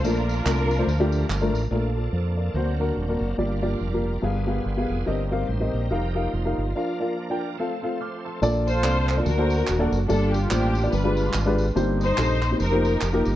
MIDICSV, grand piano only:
0, 0, Header, 1, 2, 480
1, 0, Start_track
1, 0, Key_signature, -2, "major"
1, 0, Tempo, 417827
1, 57, Time_signature, 4, 2, 24, 8
1, 15347, End_track
2, 0, Start_track
2, 0, Title_t, "Grand piano"
2, 0, Program_c, 0, 0
2, 45, Note_on_c, 0, 57, 69
2, 52, Note_on_c, 0, 62, 72
2, 54, Note_on_c, 0, 46, 69
2, 56, Note_on_c, 0, 65, 70
2, 61, Note_on_c, 0, 70, 82
2, 353, Note_off_c, 0, 57, 0
2, 357, Note_off_c, 0, 62, 0
2, 358, Note_off_c, 0, 65, 0
2, 361, Note_off_c, 0, 70, 0
2, 522, Note_on_c, 0, 57, 63
2, 523, Note_on_c, 0, 62, 59
2, 532, Note_on_c, 0, 65, 59
2, 534, Note_on_c, 0, 70, 76
2, 762, Note_off_c, 0, 57, 0
2, 763, Note_off_c, 0, 62, 0
2, 766, Note_off_c, 0, 46, 0
2, 767, Note_off_c, 0, 65, 0
2, 768, Note_off_c, 0, 70, 0
2, 897, Note_on_c, 0, 57, 71
2, 902, Note_on_c, 0, 62, 74
2, 906, Note_on_c, 0, 65, 70
2, 910, Note_on_c, 0, 72, 79
2, 1023, Note_off_c, 0, 57, 0
2, 1026, Note_off_c, 0, 62, 0
2, 1028, Note_off_c, 0, 65, 0
2, 1029, Note_off_c, 0, 72, 0
2, 1144, Note_on_c, 0, 57, 90
2, 1146, Note_on_c, 0, 62, 83
2, 1152, Note_on_c, 0, 65, 78
2, 1154, Note_on_c, 0, 67, 100
2, 1413, Note_off_c, 0, 57, 0
2, 1414, Note_off_c, 0, 62, 0
2, 1417, Note_off_c, 0, 65, 0
2, 1418, Note_off_c, 0, 67, 0
2, 1621, Note_on_c, 0, 57, 88
2, 1624, Note_on_c, 0, 62, 77
2, 1625, Note_on_c, 0, 65, 79
2, 1634, Note_on_c, 0, 70, 96
2, 1835, Note_off_c, 0, 57, 0
2, 1836, Note_off_c, 0, 62, 0
2, 1837, Note_off_c, 0, 65, 0
2, 1841, Note_off_c, 0, 70, 0
2, 1962, Note_on_c, 0, 57, 76
2, 1965, Note_on_c, 0, 62, 66
2, 1969, Note_on_c, 0, 65, 67
2, 1970, Note_on_c, 0, 46, 58
2, 1979, Note_on_c, 0, 70, 85
2, 2124, Note_off_c, 0, 57, 0
2, 2125, Note_off_c, 0, 62, 0
2, 2128, Note_off_c, 0, 65, 0
2, 2132, Note_off_c, 0, 70, 0
2, 2246, Note_on_c, 0, 69, 59
2, 2250, Note_on_c, 0, 65, 44
2, 2432, Note_off_c, 0, 69, 0
2, 2440, Note_on_c, 0, 72, 52
2, 2443, Note_off_c, 0, 65, 0
2, 2449, Note_on_c, 0, 69, 43
2, 2685, Note_off_c, 0, 46, 0
2, 2712, Note_off_c, 0, 72, 0
2, 2716, Note_off_c, 0, 69, 0
2, 2726, Note_on_c, 0, 74, 60
2, 2733, Note_on_c, 0, 70, 51
2, 2929, Note_on_c, 0, 58, 73
2, 2933, Note_on_c, 0, 62, 67
2, 2935, Note_on_c, 0, 50, 63
2, 2944, Note_on_c, 0, 66, 71
2, 2945, Note_on_c, 0, 72, 93
2, 3088, Note_off_c, 0, 58, 0
2, 3090, Note_off_c, 0, 62, 0
2, 3096, Note_off_c, 0, 66, 0
2, 3096, Note_off_c, 0, 72, 0
2, 3186, Note_off_c, 0, 74, 0
2, 3190, Note_off_c, 0, 70, 0
2, 3210, Note_on_c, 0, 58, 70
2, 3216, Note_on_c, 0, 62, 70
2, 3222, Note_on_c, 0, 66, 64
2, 3224, Note_on_c, 0, 70, 90
2, 3381, Note_off_c, 0, 58, 0
2, 3384, Note_off_c, 0, 62, 0
2, 3388, Note_off_c, 0, 66, 0
2, 3389, Note_off_c, 0, 70, 0
2, 3540, Note_on_c, 0, 58, 71
2, 3543, Note_on_c, 0, 62, 72
2, 3551, Note_on_c, 0, 66, 68
2, 3552, Note_on_c, 0, 70, 76
2, 3649, Note_off_c, 0, 50, 0
2, 3756, Note_off_c, 0, 58, 0
2, 3757, Note_off_c, 0, 62, 0
2, 3761, Note_off_c, 0, 66, 0
2, 3762, Note_off_c, 0, 70, 0
2, 3875, Note_on_c, 0, 58, 72
2, 3882, Note_on_c, 0, 65, 69
2, 3886, Note_on_c, 0, 43, 67
2, 3887, Note_on_c, 0, 67, 69
2, 3891, Note_on_c, 0, 74, 85
2, 4042, Note_off_c, 0, 58, 0
2, 4046, Note_off_c, 0, 65, 0
2, 4048, Note_off_c, 0, 67, 0
2, 4050, Note_off_c, 0, 74, 0
2, 4156, Note_on_c, 0, 58, 75
2, 4158, Note_on_c, 0, 65, 73
2, 4163, Note_on_c, 0, 67, 70
2, 4167, Note_on_c, 0, 74, 86
2, 4336, Note_off_c, 0, 58, 0
2, 4337, Note_off_c, 0, 65, 0
2, 4339, Note_off_c, 0, 67, 0
2, 4341, Note_off_c, 0, 74, 0
2, 4518, Note_on_c, 0, 58, 73
2, 4520, Note_on_c, 0, 65, 70
2, 4525, Note_on_c, 0, 67, 62
2, 4528, Note_on_c, 0, 70, 75
2, 4606, Note_off_c, 0, 43, 0
2, 4727, Note_off_c, 0, 58, 0
2, 4728, Note_off_c, 0, 65, 0
2, 4730, Note_off_c, 0, 67, 0
2, 4731, Note_off_c, 0, 70, 0
2, 4848, Note_on_c, 0, 59, 73
2, 4854, Note_on_c, 0, 43, 72
2, 4854, Note_on_c, 0, 67, 68
2, 4861, Note_on_c, 0, 68, 72
2, 4867, Note_on_c, 0, 77, 84
2, 5010, Note_off_c, 0, 59, 0
2, 5013, Note_off_c, 0, 67, 0
2, 5017, Note_off_c, 0, 68, 0
2, 5020, Note_off_c, 0, 77, 0
2, 5132, Note_on_c, 0, 59, 73
2, 5133, Note_on_c, 0, 67, 66
2, 5142, Note_on_c, 0, 68, 61
2, 5143, Note_on_c, 0, 77, 75
2, 5306, Note_off_c, 0, 59, 0
2, 5306, Note_off_c, 0, 67, 0
2, 5311, Note_off_c, 0, 68, 0
2, 5311, Note_off_c, 0, 77, 0
2, 5479, Note_on_c, 0, 59, 74
2, 5482, Note_on_c, 0, 67, 66
2, 5488, Note_on_c, 0, 68, 68
2, 5491, Note_on_c, 0, 77, 81
2, 5572, Note_off_c, 0, 43, 0
2, 5689, Note_off_c, 0, 59, 0
2, 5690, Note_off_c, 0, 67, 0
2, 5693, Note_off_c, 0, 68, 0
2, 5695, Note_off_c, 0, 77, 0
2, 5812, Note_on_c, 0, 60, 81
2, 5814, Note_on_c, 0, 67, 63
2, 5819, Note_on_c, 0, 43, 66
2, 5822, Note_on_c, 0, 70, 71
2, 5829, Note_on_c, 0, 75, 84
2, 5974, Note_off_c, 0, 60, 0
2, 5976, Note_off_c, 0, 67, 0
2, 5979, Note_off_c, 0, 70, 0
2, 5983, Note_off_c, 0, 75, 0
2, 6102, Note_on_c, 0, 60, 77
2, 6109, Note_on_c, 0, 67, 70
2, 6112, Note_on_c, 0, 70, 69
2, 6115, Note_on_c, 0, 77, 84
2, 6272, Note_off_c, 0, 60, 0
2, 6276, Note_off_c, 0, 67, 0
2, 6278, Note_off_c, 0, 70, 0
2, 6279, Note_off_c, 0, 77, 0
2, 6435, Note_on_c, 0, 60, 71
2, 6437, Note_on_c, 0, 67, 67
2, 6442, Note_on_c, 0, 70, 60
2, 6448, Note_on_c, 0, 75, 74
2, 6537, Note_off_c, 0, 43, 0
2, 6649, Note_off_c, 0, 60, 0
2, 6650, Note_off_c, 0, 67, 0
2, 6652, Note_off_c, 0, 70, 0
2, 6655, Note_off_c, 0, 75, 0
2, 6782, Note_on_c, 0, 63, 82
2, 6787, Note_on_c, 0, 67, 73
2, 6793, Note_on_c, 0, 70, 71
2, 6797, Note_on_c, 0, 77, 88
2, 6942, Note_off_c, 0, 63, 0
2, 6944, Note_off_c, 0, 67, 0
2, 6947, Note_off_c, 0, 70, 0
2, 6949, Note_off_c, 0, 77, 0
2, 7063, Note_on_c, 0, 63, 75
2, 7065, Note_on_c, 0, 67, 68
2, 7071, Note_on_c, 0, 70, 66
2, 7078, Note_on_c, 0, 77, 81
2, 7235, Note_off_c, 0, 63, 0
2, 7236, Note_off_c, 0, 67, 0
2, 7239, Note_off_c, 0, 70, 0
2, 7242, Note_off_c, 0, 77, 0
2, 7411, Note_on_c, 0, 63, 73
2, 7414, Note_on_c, 0, 70, 71
2, 7415, Note_on_c, 0, 67, 64
2, 7426, Note_on_c, 0, 77, 85
2, 7619, Note_off_c, 0, 63, 0
2, 7620, Note_off_c, 0, 70, 0
2, 7621, Note_off_c, 0, 67, 0
2, 7626, Note_off_c, 0, 77, 0
2, 7760, Note_on_c, 0, 62, 68
2, 7763, Note_on_c, 0, 65, 73
2, 7772, Note_on_c, 0, 70, 63
2, 7774, Note_on_c, 0, 77, 81
2, 7912, Note_off_c, 0, 62, 0
2, 7914, Note_off_c, 0, 65, 0
2, 7918, Note_off_c, 0, 70, 0
2, 7919, Note_off_c, 0, 77, 0
2, 8040, Note_on_c, 0, 62, 72
2, 8046, Note_on_c, 0, 65, 72
2, 8051, Note_on_c, 0, 70, 65
2, 8054, Note_on_c, 0, 77, 80
2, 8205, Note_off_c, 0, 62, 0
2, 8208, Note_off_c, 0, 65, 0
2, 8211, Note_off_c, 0, 70, 0
2, 8212, Note_off_c, 0, 77, 0
2, 8382, Note_on_c, 0, 62, 73
2, 8386, Note_on_c, 0, 65, 70
2, 8393, Note_on_c, 0, 70, 68
2, 8396, Note_on_c, 0, 79, 86
2, 8586, Note_off_c, 0, 62, 0
2, 8588, Note_off_c, 0, 65, 0
2, 8591, Note_off_c, 0, 70, 0
2, 8593, Note_off_c, 0, 79, 0
2, 8723, Note_on_c, 0, 60, 80
2, 8727, Note_on_c, 0, 65, 66
2, 8729, Note_on_c, 0, 69, 77
2, 8736, Note_on_c, 0, 77, 83
2, 8875, Note_off_c, 0, 60, 0
2, 8877, Note_off_c, 0, 65, 0
2, 8878, Note_off_c, 0, 69, 0
2, 8881, Note_off_c, 0, 77, 0
2, 8986, Note_on_c, 0, 60, 70
2, 8995, Note_on_c, 0, 65, 63
2, 8998, Note_on_c, 0, 69, 64
2, 9002, Note_on_c, 0, 77, 84
2, 9159, Note_off_c, 0, 60, 0
2, 9163, Note_off_c, 0, 65, 0
2, 9165, Note_off_c, 0, 69, 0
2, 9167, Note_off_c, 0, 77, 0
2, 9199, Note_on_c, 0, 89, 58
2, 9208, Note_on_c, 0, 86, 49
2, 9462, Note_off_c, 0, 89, 0
2, 9467, Note_off_c, 0, 86, 0
2, 9477, Note_on_c, 0, 84, 51
2, 9484, Note_on_c, 0, 81, 45
2, 9668, Note_on_c, 0, 58, 79
2, 9673, Note_on_c, 0, 62, 82
2, 9675, Note_on_c, 0, 46, 74
2, 9675, Note_on_c, 0, 69, 86
2, 9678, Note_on_c, 0, 65, 84
2, 9685, Note_on_c, 0, 74, 108
2, 9931, Note_off_c, 0, 84, 0
2, 9935, Note_off_c, 0, 81, 0
2, 9974, Note_off_c, 0, 58, 0
2, 9977, Note_off_c, 0, 62, 0
2, 9977, Note_off_c, 0, 69, 0
2, 9979, Note_off_c, 0, 65, 0
2, 9982, Note_off_c, 0, 74, 0
2, 10138, Note_on_c, 0, 58, 63
2, 10149, Note_on_c, 0, 62, 56
2, 10149, Note_on_c, 0, 65, 61
2, 10153, Note_on_c, 0, 74, 76
2, 10154, Note_on_c, 0, 69, 60
2, 10380, Note_off_c, 0, 58, 0
2, 10385, Note_off_c, 0, 65, 0
2, 10386, Note_off_c, 0, 62, 0
2, 10387, Note_off_c, 0, 46, 0
2, 10388, Note_off_c, 0, 69, 0
2, 10388, Note_off_c, 0, 74, 0
2, 10529, Note_on_c, 0, 58, 59
2, 10533, Note_on_c, 0, 62, 67
2, 10536, Note_on_c, 0, 65, 59
2, 10542, Note_on_c, 0, 69, 56
2, 10544, Note_on_c, 0, 74, 69
2, 10632, Note_off_c, 0, 58, 0
2, 10634, Note_off_c, 0, 62, 0
2, 10635, Note_off_c, 0, 65, 0
2, 10636, Note_on_c, 0, 50, 70
2, 10638, Note_off_c, 0, 69, 0
2, 10640, Note_off_c, 0, 74, 0
2, 10766, Note_on_c, 0, 58, 84
2, 10773, Note_on_c, 0, 62, 68
2, 10777, Note_on_c, 0, 66, 77
2, 10781, Note_on_c, 0, 69, 74
2, 10788, Note_on_c, 0, 72, 91
2, 11033, Note_off_c, 0, 58, 0
2, 11037, Note_off_c, 0, 62, 0
2, 11038, Note_off_c, 0, 66, 0
2, 11041, Note_off_c, 0, 69, 0
2, 11044, Note_off_c, 0, 72, 0
2, 11247, Note_on_c, 0, 58, 90
2, 11249, Note_on_c, 0, 62, 80
2, 11253, Note_on_c, 0, 69, 80
2, 11255, Note_on_c, 0, 66, 78
2, 11257, Note_on_c, 0, 74, 96
2, 11346, Note_off_c, 0, 50, 0
2, 11457, Note_off_c, 0, 58, 0
2, 11458, Note_off_c, 0, 62, 0
2, 11460, Note_off_c, 0, 69, 0
2, 11461, Note_off_c, 0, 66, 0
2, 11462, Note_off_c, 0, 74, 0
2, 11585, Note_on_c, 0, 58, 73
2, 11585, Note_on_c, 0, 62, 70
2, 11592, Note_on_c, 0, 43, 64
2, 11593, Note_on_c, 0, 65, 67
2, 11593, Note_on_c, 0, 67, 73
2, 11597, Note_on_c, 0, 74, 92
2, 11890, Note_off_c, 0, 62, 0
2, 11891, Note_off_c, 0, 58, 0
2, 11894, Note_off_c, 0, 65, 0
2, 11894, Note_off_c, 0, 67, 0
2, 11896, Note_off_c, 0, 74, 0
2, 12063, Note_on_c, 0, 58, 71
2, 12063, Note_on_c, 0, 62, 65
2, 12070, Note_on_c, 0, 65, 64
2, 12070, Note_on_c, 0, 67, 67
2, 12078, Note_on_c, 0, 72, 78
2, 12300, Note_off_c, 0, 58, 0
2, 12300, Note_off_c, 0, 62, 0
2, 12302, Note_off_c, 0, 43, 0
2, 12304, Note_off_c, 0, 65, 0
2, 12304, Note_off_c, 0, 67, 0
2, 12308, Note_off_c, 0, 72, 0
2, 12442, Note_on_c, 0, 58, 68
2, 12446, Note_on_c, 0, 62, 59
2, 12447, Note_on_c, 0, 65, 58
2, 12452, Note_on_c, 0, 74, 74
2, 12453, Note_on_c, 0, 67, 60
2, 12546, Note_off_c, 0, 58, 0
2, 12548, Note_off_c, 0, 62, 0
2, 12548, Note_off_c, 0, 65, 0
2, 12551, Note_off_c, 0, 67, 0
2, 12551, Note_off_c, 0, 74, 0
2, 12551, Note_on_c, 0, 43, 70
2, 12679, Note_on_c, 0, 56, 85
2, 12686, Note_on_c, 0, 65, 72
2, 12687, Note_on_c, 0, 62, 73
2, 12694, Note_on_c, 0, 67, 72
2, 12696, Note_on_c, 0, 71, 87
2, 12947, Note_off_c, 0, 56, 0
2, 12950, Note_off_c, 0, 65, 0
2, 12951, Note_off_c, 0, 62, 0
2, 12955, Note_off_c, 0, 67, 0
2, 12955, Note_off_c, 0, 71, 0
2, 13164, Note_on_c, 0, 62, 87
2, 13166, Note_on_c, 0, 56, 92
2, 13168, Note_on_c, 0, 65, 79
2, 13177, Note_on_c, 0, 67, 80
2, 13179, Note_on_c, 0, 71, 104
2, 13260, Note_off_c, 0, 43, 0
2, 13373, Note_off_c, 0, 62, 0
2, 13374, Note_off_c, 0, 56, 0
2, 13374, Note_off_c, 0, 65, 0
2, 13379, Note_off_c, 0, 67, 0
2, 13380, Note_off_c, 0, 71, 0
2, 13503, Note_on_c, 0, 58, 87
2, 13508, Note_on_c, 0, 60, 84
2, 13509, Note_on_c, 0, 43, 74
2, 13512, Note_on_c, 0, 63, 75
2, 13514, Note_on_c, 0, 72, 100
2, 13516, Note_on_c, 0, 67, 86
2, 13807, Note_off_c, 0, 58, 0
2, 13809, Note_off_c, 0, 60, 0
2, 13811, Note_off_c, 0, 63, 0
2, 13812, Note_off_c, 0, 72, 0
2, 13813, Note_off_c, 0, 67, 0
2, 13981, Note_on_c, 0, 58, 65
2, 13984, Note_on_c, 0, 60, 67
2, 13989, Note_on_c, 0, 63, 66
2, 13991, Note_on_c, 0, 69, 77
2, 13996, Note_on_c, 0, 67, 63
2, 14216, Note_off_c, 0, 58, 0
2, 14218, Note_off_c, 0, 43, 0
2, 14218, Note_off_c, 0, 60, 0
2, 14220, Note_off_c, 0, 63, 0
2, 14221, Note_off_c, 0, 69, 0
2, 14224, Note_off_c, 0, 67, 0
2, 14367, Note_on_c, 0, 58, 65
2, 14370, Note_on_c, 0, 63, 58
2, 14372, Note_on_c, 0, 60, 67
2, 14382, Note_on_c, 0, 67, 55
2, 14383, Note_on_c, 0, 72, 74
2, 14466, Note_off_c, 0, 58, 0
2, 14467, Note_off_c, 0, 63, 0
2, 14468, Note_off_c, 0, 60, 0
2, 14473, Note_off_c, 0, 67, 0
2, 14473, Note_off_c, 0, 72, 0
2, 14606, Note_on_c, 0, 58, 81
2, 14606, Note_on_c, 0, 63, 71
2, 14612, Note_on_c, 0, 65, 76
2, 14615, Note_on_c, 0, 67, 71
2, 14620, Note_on_c, 0, 72, 88
2, 14868, Note_off_c, 0, 58, 0
2, 14868, Note_off_c, 0, 63, 0
2, 14870, Note_off_c, 0, 65, 0
2, 14872, Note_off_c, 0, 67, 0
2, 14874, Note_off_c, 0, 72, 0
2, 15081, Note_on_c, 0, 58, 90
2, 15083, Note_on_c, 0, 63, 81
2, 15085, Note_on_c, 0, 65, 77
2, 15094, Note_on_c, 0, 67, 86
2, 15097, Note_on_c, 0, 70, 90
2, 15288, Note_off_c, 0, 58, 0
2, 15289, Note_off_c, 0, 63, 0
2, 15290, Note_off_c, 0, 65, 0
2, 15295, Note_off_c, 0, 67, 0
2, 15296, Note_off_c, 0, 70, 0
2, 15347, End_track
0, 0, End_of_file